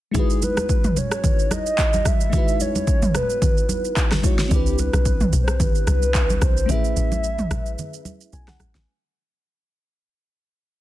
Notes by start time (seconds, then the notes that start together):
0.11 G#3 D#4, kick, low conga, shaker
0.15 E4 F#4 G#4 B4
0.30 shaker
0.42 B4, high conga, shaker
0.57 cross-stick, high conga, shaker
0.69 kick, shaker
0.84 mid tom, high conga, shaker
0.96 C#5, high conga, shaker
1.11 cross-stick, shaker
1.24 kick, low conga, shaker
1.39 shaker
1.51 D#5, cross-stick, high conga, shaker
1.66 shaker
1.78 kick, clap, shaker
1.93 high conga, shaker
2.05 E5, kick, cross-stick, high conga, shaker
2.21 shaker
2.30 G#3 D#4, kick, low conga, shaker
2.34 E4 F#4 B4
2.48 shaker
2.60 C#5, high conga, shaker
2.75 high conga, shaker
2.87 kick, shaker
3.02 mid tom, high conga, shaker
3.15 B4, cross-stick, high conga, shaker
3.30 shaker
3.42 kick, low conga, shaker
3.57 shaker
3.69 high conga, shaker
3.85 shaker
3.97 kick, clap, shaker
4.11 cross-stick, snare, high conga, shaker
4.22 G#3 D#4 E4 F#4 C#5, kick, high conga, shaker
4.39 snare, shaker
4.48 C2 C4 D4 E4, kick, low conga, shaker
4.52 G4 B4
4.66 shaker
4.78 B4, high conga, shaker
4.93 B1, cross-stick, high conga, shaker
5.05 kick, shaker
5.20 mid tom, high conga, shaker
5.33 B1, high conga, shaker
5.43 C5
5.48 cross-stick, shaker
5.55 C5
5.60 B4, kick, low conga, shaker
5.75 shaker
5.87 C2, cross-stick, high conga, shaker
6.02 shaker
6.14 kick, clap, shaker
6.30 high conga, shaker
6.41 B1 C5, kick, cross-stick, high conga, shaker
6.57 shaker
6.66 A1 A3 C#4 E4, low conga, shaker
6.70 G#4 B4 E5
6.84 shaker
6.97 A1, high conga, shaker
7.12 high conga, shaker
7.24 shaker
7.38 mid tom, high conga, shaker
7.51 A1, cross-stick, high conga, shaker
7.66 shaker
7.78 low conga, shaker
7.94 shaker
8.05 high conga, shaker
8.21 shaker
8.33 B1 G#5, shaker
8.48 F#5, cross-stick, snare, high conga, shaker
8.60 A1, cross-stick, high conga, shaker
8.75 A1, snare, shaker